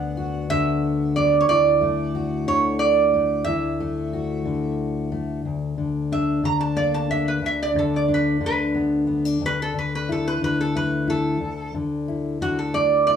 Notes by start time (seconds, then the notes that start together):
Already playing: D2 D3 B3 D4 F#5
0.17 F#4
0.50 D3 E5
1.16 B3 D5
1.41 C#5
1.49 D2 E4 D5
1.81 A3
2.15 F#4
2.47 D3 C#5
2.79 D5
3.14 A3
3.44 D2 E4 E5
3.80 A3
4.13 F#4
4.45 D3
5.12 A3
5.45 D2
5.78 D3
6.12 D4 E5
6.44 D3 A#5
6.61 A5
6.76 A#3 D5
6.94 A5
7.10 D4 E5
7.28 B4
7.42 D2 E5
7.63 D5
7.75 D3 A4
7.96 D5
8.08 D4
8.14 B4
8.41 D3
8.46 B4
8.75 B3
9.07 B3
9.25 D4
9.41 D2
9.46 B4
9.62 A4
9.74 D3
9.79 B4
9.95 B4
10.09 E4 A4
10.28 B4
10.41 D3 B4
10.61 A4
10.75 A3 B4
11.08 E4 A4
11.40 D2
11.74 D3
12.08 E4
12.41 D3 F#4
12.59 A4
12.74 A3 D5
13.07 E4 D5